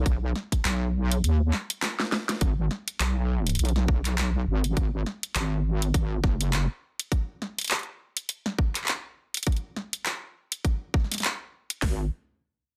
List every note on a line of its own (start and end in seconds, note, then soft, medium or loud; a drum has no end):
0.06 0.33 B1 loud
0.06 kick loud
0.06 closed hi-hat medium
0.36 snare soft
0.52 kick medium
0.52 closed hi-hat medium
0.65 1.22 B1 loud
0.65 clap loud
0.65 closed hi-hat medium
1.11 closed hi-hat medium
1.24 1.51 D#2 loud
1.24 closed hi-hat medium
1.53 clap soft
1.53 snare soft
1.70 closed hi-hat medium
1.82 snare medium
1.82 clap loud
1.82 closed hi-hat medium
2.00 snare medium
2.12 snare medium
2.29 snare medium
2.29 closed hi-hat medium
2.41 2.69 G#1 loud
2.41 kick loud
2.41 closed hi-hat medium
2.71 snare soft
2.88 closed hi-hat medium
3.00 3.57 B1 medium
3.00 clap loud
3.00 closed hi-hat medium
3.47 closed hi-hat medium
3.49 closed hi-hat medium
3.55 closed hi-hat soft
3.59 4.45 B1 loud
3.59 closed hi-hat medium
3.65 closed hi-hat soft
3.69 closed hi-hat soft
3.76 snare medium
3.88 kick loud
4.05 clap soft
4.05 closed hi-hat medium
4.18 clap loud
4.18 closed hi-hat medium
4.48 4.75 G#1 loud
4.64 closed hi-hat medium
4.77 5.04 G#1 loud
4.77 kick loud
4.77 closed hi-hat medium
5.06 snare soft
5.23 closed hi-hat medium
5.35 5.92 G#1 loud
5.35 clap loud
5.35 closed hi-hat medium
5.82 closed hi-hat medium
5.94 6.22 G#1 loud
5.94 kick loud
5.94 closed hi-hat medium
6.24 6.67 F#1 loud
6.24 kick loud
6.24 snare soft
6.41 closed hi-hat medium
6.53 clap loud
6.53 closed hi-hat medium
7.00 closed hi-hat medium
7.12 kick loud
7.12 closed hi-hat medium
7.42 snare soft
7.59 closed hi-hat medium
7.61 closed hi-hat medium
7.64 closed hi-hat soft
7.68 clap loud
7.68 closed hi-hat soft
7.71 closed hi-hat medium
7.79 closed hi-hat soft
7.83 closed hi-hat soft
8.17 closed hi-hat medium
8.29 closed hi-hat medium
8.46 snare medium
8.59 kick loud
8.75 clap soft
8.75 closed hi-hat medium
8.84 clap soft
8.88 clap loud
8.88 closed hi-hat medium
8.93 clap soft
9.34 closed hi-hat medium
9.37 closed hi-hat medium
9.43 closed hi-hat soft
9.47 kick loud
9.47 closed hi-hat medium
9.52 closed hi-hat soft
9.56 closed hi-hat soft
9.76 snare soft
9.93 closed hi-hat medium
10.06 clap loud
10.06 closed hi-hat medium
10.52 closed hi-hat medium
10.65 kick loud
10.65 closed hi-hat medium
10.94 kick loud
10.94 snare soft
11.00 snare soft
11.04 snare soft
11.12 snare soft
11.12 closed hi-hat medium
11.14 snare soft
11.14 closed hi-hat soft
11.18 snare soft
11.18 closed hi-hat soft
11.20 closed hi-hat soft
11.22 clap loud
11.22 closed hi-hat soft
11.24 closed hi-hat soft
11.70 closed hi-hat medium
11.82 12.10 G#1 loud
11.82 kick loud
11.82 snare loud
11.82 open hi-hat medium